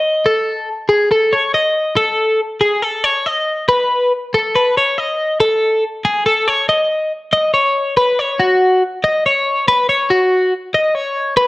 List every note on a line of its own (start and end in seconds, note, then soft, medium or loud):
0.00 0.26 D#5 medium
0.26 0.69 A4 medium
0.89 1.11 G#4 medium
1.11 1.33 A4 medium
1.33 1.54 C#5 medium
1.54 1.96 D#5 medium
1.97 2.40 A4 medium
2.61 2.82 G#4 medium
2.82 3.04 A4 medium
3.04 3.26 C#5 medium
3.26 3.68 D#5 medium
3.69 4.12 B4 medium
4.34 4.55 A4 medium
4.55 4.77 B4 medium
4.77 4.98 C#5 medium
4.98 5.40 D#5 medium
5.40 5.83 A4 medium
6.05 6.26 G#4 medium
6.26 6.48 A4 medium
6.48 6.69 C#5 medium
6.69 7.12 D#5 medium
7.33 7.53 D#5 medium
7.54 7.97 C#5 medium
7.97 8.19 B4 medium
8.19 8.40 C#5 medium
8.40 8.82 F#4 medium
9.04 9.25 D#5 medium
9.26 9.68 C#5 medium
9.68 9.89 B4 loud
9.89 10.10 C#5 medium
10.10 10.53 F#4 medium
10.74 10.95 D#5 medium
10.95 11.37 C#5 medium
11.37 11.47 B4 loud